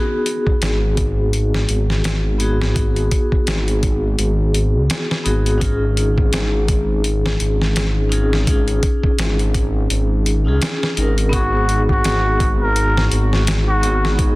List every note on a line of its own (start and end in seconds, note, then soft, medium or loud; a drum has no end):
0.00 2.35 B3 medium
0.00 2.36 D#4 medium
0.00 2.37 F#4 medium
0.00 2.39 G#4 medium
0.26 closed hi-hat medium
0.47 kick medium
0.62 1.66 G#1 medium
0.62 snare loud
0.62 closed hi-hat medium
0.97 kick medium
0.97 closed hi-hat medium
1.33 closed hi-hat medium
1.54 snare medium
1.69 3.09 G#1 medium
1.69 closed hi-hat medium
1.90 snare soft
2.04 snare loud
2.04 closed hi-hat medium
2.38 2.71 B3 medium
2.38 2.72 D#4 medium
2.38 2.73 F#4 medium
2.38 2.73 G#4 medium
2.38 closed hi-hat medium
2.62 snare medium
2.72 5.20 B3 medium
2.72 5.22 D#4 medium
2.72 kick loud
2.72 closed hi-hat medium
2.77 5.23 F#4 medium
2.77 5.24 G#4 medium
2.96 closed hi-hat soft
3.11 kick medium
3.11 closed hi-hat medium
3.32 kick medium
3.47 4.16 G#1 medium
3.47 snare loud
3.47 closed hi-hat medium
3.68 closed hi-hat soft
3.83 kick medium
3.83 closed hi-hat medium
4.19 4.76 G#1 medium
4.19 closed hi-hat medium
4.54 closed hi-hat medium
4.75 4.88 C#2 medium
4.90 snare loud
4.90 closed hi-hat medium
5.11 snare soft
5.24 6.30 G#1 medium
5.24 5.57 B3 medium
5.24 5.58 D#4 medium
5.24 5.58 F#4 medium
5.24 5.59 G#4 medium
5.24 closed hi-hat medium
5.46 closed hi-hat soft
5.58 8.06 C#4 medium
5.58 8.07 D#4 medium
5.58 kick loud
5.58 closed hi-hat medium
5.63 8.09 F4 medium
5.63 8.10 G#4 loud
5.97 closed hi-hat medium
6.18 kick medium
6.33 7.37 G#1 medium
6.33 snare loud
6.33 closed hi-hat medium
6.68 kick medium
6.68 closed hi-hat medium
7.04 closed hi-hat medium
7.26 snare medium
7.40 8.80 G#1 medium
7.40 closed hi-hat medium
7.62 snare soft
7.76 snare loud
7.76 closed hi-hat medium
8.09 8.42 C#4 medium
8.09 8.43 D#4 medium
8.09 8.44 F4 medium
8.09 8.45 G#4 medium
8.09 closed hi-hat medium
8.33 snare soft
8.43 10.40 C#4 medium
8.43 10.42 D#4 medium
8.47 10.43 F4 medium
8.47 10.44 G#4 medium
8.47 kick loud
8.47 closed hi-hat medium
8.68 closed hi-hat soft
8.83 kick loud
8.83 closed hi-hat medium
9.04 kick medium
9.19 9.87 G#1 medium
9.19 snare loud
9.19 closed hi-hat medium
9.39 closed hi-hat soft
9.54 kick medium
9.54 closed hi-hat medium
9.90 10.48 G#1 medium
9.90 closed hi-hat medium
10.26 closed hi-hat medium
10.45 10.60 C#2 loud
10.45 10.93 C#4 medium
10.45 10.93 D#4 medium
10.45 10.94 F4 medium
10.45 10.95 G#4 medium
10.62 snare loud
10.62 closed hi-hat medium
10.83 snare soft
10.95 12.02 G#1 medium
10.95 11.28 C#4 medium
10.95 11.29 D#4 medium
10.95 11.30 F4 medium
10.95 11.30 A#4 medium
10.95 closed hi-hat medium
11.18 closed hi-hat soft
11.29 13.78 B3 loud
11.29 13.79 D#4 medium
11.29 kick loud
11.29 closed hi-hat medium
11.34 13.80 F#4 medium
11.34 11.84 F#4 medium
11.34 13.81 G#4 loud
11.69 closed hi-hat medium
11.89 12.53 F#4 medium
11.89 kick medium
12.04 13.09 G#1 loud
12.04 snare loud
12.04 closed hi-hat medium
12.40 kick medium
12.40 closed hi-hat medium
12.62 13.08 A#4 medium
12.76 closed hi-hat medium
12.97 snare medium
13.12 14.35 G#1 medium
13.12 closed hi-hat medium
13.33 snare soft
13.47 snare loud
13.47 closed hi-hat medium
13.69 14.15 F#4 loud
13.81 14.14 B3 medium
13.81 14.15 D#4 medium
13.81 14.16 F#4 medium
13.81 14.16 G#4 medium
13.81 closed hi-hat medium
14.05 snare soft
14.15 14.35 B3 medium
14.15 14.35 D#4 medium
14.15 kick loud
14.15 closed hi-hat medium
14.20 14.35 F#3 medium
14.20 14.35 G#4 medium